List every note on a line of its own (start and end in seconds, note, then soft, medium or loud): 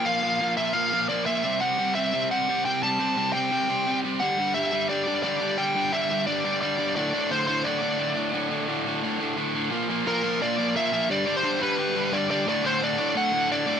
0.04 0.21 A#2 medium
0.04 0.22 F3 medium
0.04 0.22 A#3 loud
0.04 0.56 F5 medium
0.22 0.39 A#2 medium
0.22 0.40 F3 medium
0.22 0.40 A#3 medium
0.41 0.56 A#2 loud
0.41 0.56 F3 loud
0.41 0.57 A#3 loud
0.57 0.73 A#2 medium
0.57 0.73 F3 medium
0.57 0.74 A#3 medium
0.57 0.73 E5 loud
0.73 0.91 A#2 loud
0.73 0.92 F3 loud
0.73 0.93 A#3 loud
0.73 1.08 F5 loud
0.93 1.08 A#2 medium
0.93 1.09 F3 medium
0.93 1.09 A#3 loud
1.09 1.26 A#2 medium
1.09 1.27 F3 medium
1.09 1.27 A#3 loud
1.09 1.26 D5 medium
1.26 1.43 A#2 medium
1.26 1.44 F3 medium
1.26 1.44 A#3 medium
1.26 1.62 E5 medium
1.44 1.61 C3 loud
1.44 1.61 G3 medium
1.44 1.61 C4 loud
1.60 1.77 C3 medium
1.60 1.78 G3 medium
1.60 1.78 C4 medium
1.60 1.93 F#5 loud
1.78 1.95 C3 medium
1.78 1.96 G3 loud
1.78 1.96 C4 loud
1.95 2.12 C3 medium
1.95 2.13 G3 medium
1.95 2.13 C4 medium
1.95 2.28 E5 loud
2.13 2.30 C3 loud
2.13 2.31 G3 loud
2.13 2.31 C4 loud
2.31 2.47 C3 medium
2.31 2.48 G3 medium
2.31 2.48 C4 medium
2.31 2.63 F#5 medium
2.48 2.64 C3 medium
2.48 2.66 G3 medium
2.48 2.65 C4 medium
2.65 2.82 C3 medium
2.65 2.84 G3 medium
2.65 2.83 C4 medium
2.65 2.83 G5 medium
2.83 2.99 C3 medium
2.83 2.99 G3 loud
2.83 2.99 C4 medium
2.83 3.32 A5 loud
3.00 3.16 C3 medium
3.00 3.18 G3 medium
3.00 3.17 C4 medium
3.17 3.33 C3 loud
3.17 3.35 G3 loud
3.17 3.34 C4 loud
3.33 3.50 C3 medium
3.33 3.52 G3 medium
3.33 3.52 C4 medium
3.33 3.99 G5 loud
3.51 3.67 C3 loud
3.51 3.69 G3 loud
3.51 3.69 C4 loud
3.69 3.85 C3 medium
3.69 3.86 G3 medium
3.69 3.86 C4 medium
3.86 4.03 C3 medium
3.86 4.04 G3 medium
3.86 4.04 C4 medium
4.04 4.20 C3 medium
4.04 4.21 G3 medium
4.04 4.20 C4 medium
4.20 4.37 G2 medium
4.20 4.37 D3 loud
4.20 4.39 G3 medium
4.20 4.52 F#5 medium
4.38 4.54 G2 medium
4.38 4.54 D3 medium
4.38 4.56 G3 medium
4.54 4.71 G2 medium
4.54 4.71 D3 medium
4.54 4.72 G3 loud
4.54 4.89 E5 loud
4.71 4.87 G2 medium
4.71 4.88 D3 medium
4.71 4.89 G3 medium
4.88 5.06 G2 medium
4.88 5.06 D3 medium
4.88 5.07 G3 loud
4.88 5.22 D5 medium
5.07 5.22 G2 medium
5.07 5.23 D3 medium
5.07 5.23 G3 medium
5.23 5.39 G2 medium
5.23 5.40 D3 medium
5.23 5.40 G3 medium
5.23 5.59 D5 medium
5.40 5.56 G2 medium
5.40 5.58 D3 medium
5.40 5.58 G3 medium
5.57 5.74 G2 medium
5.57 5.75 D3 medium
5.57 5.75 G3 loud
5.57 5.94 G5 loud
5.75 5.91 G2 medium
5.75 5.92 D3 medium
5.75 5.92 G3 medium
5.93 6.08 G2 loud
5.93 6.09 D3 loud
5.93 6.10 G3 loud
5.93 6.26 E5 medium
6.10 6.26 G2 medium
6.10 6.26 D3 medium
6.10 6.27 G3 medium
6.27 6.43 G2 loud
6.27 6.44 D3 loud
6.27 6.44 G3 loud
6.27 6.59 D5 medium
6.44 6.60 G2 medium
6.44 6.61 D3 medium
6.44 6.61 G3 medium
6.61 6.77 G2 medium
6.61 6.77 D3 medium
6.61 6.78 G3 loud
6.61 6.94 D5 medium
6.78 6.95 G2 medium
6.78 6.95 D3 medium
6.78 6.95 G3 medium
6.96 7.13 D2 medium
6.96 7.13 A2 loud
6.96 7.14 D3 loud
6.96 7.32 D5 medium
7.13 7.30 D2 medium
7.13 7.30 A2 medium
7.13 7.31 D3 loud
7.31 7.47 D2 loud
7.31 7.46 A2 loud
7.31 7.47 D3 loud
7.31 7.46 C5 loud
7.47 7.63 D2 medium
7.47 7.64 A2 medium
7.47 7.64 D3 medium
7.47 7.66 C5 medium
7.64 7.80 D2 medium
7.64 7.81 A2 loud
7.64 7.81 D3 loud
7.64 9.33 D5 medium
7.81 7.97 D2 medium
7.81 7.98 A2 medium
7.81 7.98 D3 loud
7.98 8.14 D2 medium
7.98 8.15 A2 medium
7.98 8.16 D3 medium
8.15 8.31 D2 medium
8.15 8.32 A2 medium
8.15 8.32 D3 medium
8.32 8.49 D2 loud
8.32 8.49 A2 loud
8.32 8.49 D3 loud
8.50 8.67 D2 medium
8.50 8.67 A2 medium
8.50 8.68 D3 medium
8.68 8.85 D2 medium
8.68 8.85 A2 loud
8.68 8.86 D3 loud
8.86 9.02 D2 medium
8.86 9.02 A2 medium
8.86 9.03 D3 medium
9.03 9.18 D2 loud
9.03 9.19 A2 loud
9.03 9.19 D3 loud
9.20 9.35 D2 medium
9.20 9.36 A2 medium
9.20 9.37 D3 medium
9.37 9.53 D2 medium
9.37 9.54 A2 medium
9.37 9.54 D3 medium
9.54 9.71 D2 medium
9.54 9.71 A2 medium
9.54 9.71 D3 medium
9.71 9.88 A#2 loud
9.71 9.89 F3 loud
9.71 9.90 A#3 medium
9.90 10.05 A#2 medium
9.90 10.05 F3 medium
9.90 10.06 A#3 medium
10.06 10.22 A#2 medium
10.06 10.22 F3 loud
10.06 10.23 A#3 loud
10.06 10.39 A#4 medium
10.23 10.40 A#2 medium
10.23 10.40 F3 medium
10.23 10.41 A#3 medium
10.41 10.57 A#2 loud
10.41 10.57 F3 loud
10.41 10.58 A#3 loud
10.41 10.76 D5 medium
10.58 10.75 A#2 medium
10.58 10.75 F3 medium
10.58 10.75 A#3 medium
10.76 10.91 A#2 medium
10.76 10.92 F3 medium
10.76 10.92 A#3 medium
10.76 11.08 E5 medium
10.92 11.08 A#2 medium
10.92 11.09 F3 medium
10.92 11.09 A#3 loud
11.09 11.25 G2 medium
11.09 11.26 D3 medium
11.09 11.26 G3 medium
11.09 11.34 D5 loud
11.26 11.42 G2 medium
11.26 11.43 D3 medium
11.26 11.43 G3 medium
11.37 11.62 C5 medium
11.43 11.59 G2 medium
11.43 11.60 D3 loud
11.43 11.60 G3 medium
11.60 11.77 G2 medium
11.60 11.78 D3 medium
11.60 11.78 G3 medium
11.60 12.15 B4 loud
11.78 11.94 G2 loud
11.78 11.95 D3 loud
11.78 11.96 G3 loud
11.95 12.10 G2 medium
11.95 12.11 D3 medium
11.95 12.11 G3 loud
12.12 12.28 G2 medium
12.12 12.29 D3 medium
12.12 12.29 G3 medium
12.12 12.30 D5 medium
12.30 12.46 G2 medium
12.30 12.46 D3 medium
12.30 12.46 G3 loud
12.30 12.46 D5 medium
12.47 12.62 D2 medium
12.47 12.63 A2 loud
12.47 12.64 D3 loud
12.47 12.66 D5 loud
12.63 12.80 D2 medium
12.63 12.80 A2 medium
12.63 12.81 D3 medium
12.63 12.83 C5 loud
12.81 12.97 D2 medium
12.81 12.97 A2 medium
12.81 12.98 D3 loud
12.81 13.14 D5 loud
12.98 13.14 D2 medium
12.98 13.14 A2 medium
12.98 13.15 D3 medium
13.15 13.31 D2 loud
13.15 13.31 A2 loud
13.15 13.32 D3 loud
13.15 13.48 F#5 medium
13.32 13.48 D2 medium
13.32 13.49 A2 medium
13.32 13.49 D3 loud
13.49 13.64 D2 medium
13.49 13.65 A2 medium
13.49 13.66 D3 medium
13.49 13.80 D5 medium
13.66 13.80 D2 medium
13.66 13.80 A2 medium
13.66 13.80 D3 loud